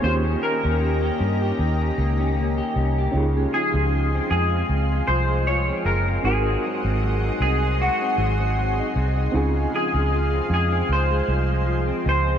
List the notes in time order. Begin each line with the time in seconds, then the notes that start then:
Already playing: G#3 C4
0.02 D#2 D#3 A#3 C#4 F4 G4 C5 D#5 A#5
0.07 G4
0.24 C#4
0.42 A#3 A#4
0.63 D#2 C#4
0.81 A#3
1.02 G4
1.19 G2 C#4
1.42 G4
1.59 D#2 D#3
1.81 C#4
1.98 C#2 A#3
2.19 C#4
2.37 A#3
2.58 G4
2.76 C2 C#4
2.98 G4
3.12 C#2 C#3 C#4 D#4 F4 G#4 F5 C6
3.17 G#4
3.37 G#3
3.54 F3 G#4
3.74 C#2 G#3
3.95 F3
4.15 C4
4.31 F2 G#3 G#4
4.54 C4
4.69 C#2
4.92 G#3
5.08 C2 F3 C5
5.31 G#3
5.47 F3 C#5
5.69 C4
5.85 F#1 G#3 A#4
6.08 C4
6.23 G#1 G#2 C4 D#4 F#4 G#4 F#5 C6 D#6
6.27 A#4
6.46 C4
6.64 F#3
6.84 G#1 C4
7.02 F#3
7.24 D#4
7.40 C2 C4 G#4
7.62 D#4
7.80 G#2 F#4
8.02 C4
8.18 G#1 F#3
8.40 C4
8.58 F#3
8.79 D#4
8.96 C2 C4
9.17 D#4
9.32 C#2 C#3 C4 D#4 F4 F5 C6
9.37 G#4
9.56 G#3
9.73 F3 G#4
9.94 C#2 G#3
10.12 F3
10.34 C4
10.50 F2 G#3 G#4
10.72 C4
10.89 C#2 C5
11.11 G#3
11.28 C2 F3
11.49 G#3
11.66 F3
11.87 C4
12.05 C#2 G#3 C5
12.27 C4